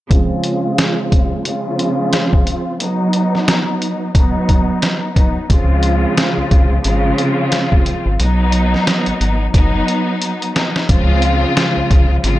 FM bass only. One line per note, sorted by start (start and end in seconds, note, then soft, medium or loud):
5.50 6.06 C#2 loud
6.38 6.43 C2 soft
6.51 6.79 C2 loud
6.85 7.13 G#1 loud
8.06 8.17 G#1 loud
8.20 8.76 B1 loud
9.07 9.13 G#1 soft
9.21 9.49 G#1 loud
9.54 9.82 F#1 loud
10.89 11.45 C#2 loud
11.77 11.82 C2 soft
11.91 12.19 C2 loud
12.24 12.39 G#1 medium